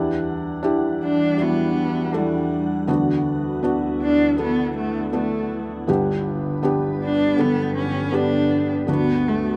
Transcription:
Already playing: felt piano E2 E3 D4 E4 G4, ambient pad E2 E3 G3 D4 F#5
0.63 felt piano D4 E4 G4
1.04 cello D4
1.38 felt piano D4 E4 F#4
1.42 cello B3
2.13 felt piano D4 E4 A4
2.18 cello G3
2.87 ambient pad D2 D3 B3 E4, felt piano D2 D3 B3 D4 F#4
3.63 felt piano B3 D4 F#4
4.03 cello D4
4.37 felt piano B3 D4 A4, cello B3
4.78 cello A3
5.13 cello A3, felt piano B3 D4 A4
5.87 felt piano G1 G2 B3 D4 G4, ambient pad G2 G4 B4
6.63 felt piano B3 D4 G4
7.03 cello D4
7.37 felt piano D3 B3 A4, cello B3
7.77 cello C#4
8.12 felt piano B3 D4 G4, cello D4
8.87 felt piano D2 D3 B3 D4 F#4, ambient pad D2 D3 E4 F#5
8.91 cello B3
9.28 cello A3

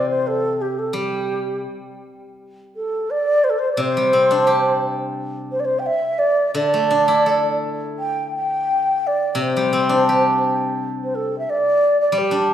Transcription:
Already playing: guzheng C3 E3
0.10 xiao C5
0.27 xiao A4
0.61 xiao G4
0.79 xiao A4
0.93 guzheng G3, xiao G4
2.76 xiao A4
3.10 xiao D5
3.44 xiao C5
3.50 xiao A4
3.58 xiao C5
3.72 xiao D5
3.77 guzheng C3, xiao C5
3.97 guzheng G3
4.13 guzheng C4
4.31 guzheng D4
4.47 guzheng G4
5.51 xiao C5
5.59 xiao D5
5.65 xiao C5
5.79 xiao G5
5.86 xiao E5
6.18 xiao D5
6.54 guzheng D3, xiao D5
6.74 guzheng A3
6.91 guzheng D4
7.08 guzheng E4
7.26 guzheng A4
7.99 xiao G5
8.36 xiao G5
9.06 xiao D5
9.33 guzheng C3, xiao D5
9.41 xiao C5
9.57 guzheng G3
9.73 guzheng C4
9.89 guzheng D4
10.09 guzheng G4
11.03 xiao C5
11.15 xiao A4
11.38 xiao E5
11.50 xiao D5
12.01 xiao D5
12.12 guzheng G3
12.18 xiao G4
12.31 guzheng D4

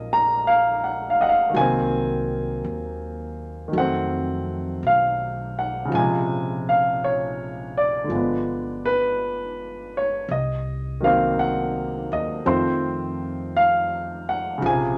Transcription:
Already playing: upright bass A#1, grand piano F3 F#3 A#3 C#4 D#5
0.13 grand piano A#5
0.47 grand piano F5
0.84 grand piano F#5
1.10 grand piano F5
1.20 grand piano D#5 F#5, muted upright bass stroke
1.29 grand piano F5
1.50 grand piano D#3 F#3
1.54 upright bass C2, grand piano A#3 G#5
1.61 grand piano C4
2.64 upright bass D#2
3.68 grand piano D#3
3.72 upright bass F2, grand piano F#3 A3
3.78 grand piano C4 F#5
4.83 upright bass B1, grand piano F5
5.59 grand piano F#5
5.85 grand piano C#3
5.89 upright bass A#1, grand piano F3 G#3
5.95 grand piano C3 G#5
6.69 grand piano F5
7.04 grand piano C#5
7.78 grand piano D5
8.04 grand piano D3
8.08 upright bass G1, grand piano F3 G#3
8.15 grand piano B3
8.85 grand piano B4
9.97 grand piano C#5
10.28 upright bass C2, grand piano D#5
11.00 grand piano D#3 F#3 A#3 F5
11.05 grand piano C4
11.39 grand piano F#5
12.12 upright bass D#2, grand piano D#5
12.45 upright bass F2, grand piano D#3 F3 A3 C4 C5
13.57 grand piano F5
14.29 grand piano F#5
14.58 grand piano C#3 F3
14.62 upright bass A#1, grand piano G#4 G#5
14.69 grand piano C3

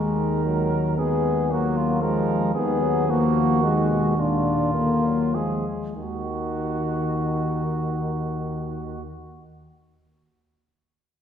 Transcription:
Already playing: tuba D#2, trombone D#3, french horn G#3, flugelhorn A#4
0.46 french horn F#3
0.98 trombone G#3, french horn B3, flugelhorn G#4
1.50 trombone F#3, french horn A#3, flugelhorn F#4
1.76 flugelhorn F4
2.02 trombone F3, french horn G#3, flugelhorn A#4
2.55 tuba D#2, trombone D#3, french horn B3, flugelhorn G#4
2.81 trombone F#3
3.09 trombone F3, french horn A#3, flugelhorn F#4
3.63 trombone D#3, french horn G#3
3.91 trombone B2
4.18 trombone A#2, french horn D4, flugelhorn F4
4.74 trombone D3, french horn A#3
5.05 trombone F#3
5.35 trombone F3, french horn G#3, flugelhorn G#4
5.96 tuba D#2, trombone D#3, french horn D#3, flugelhorn F#4

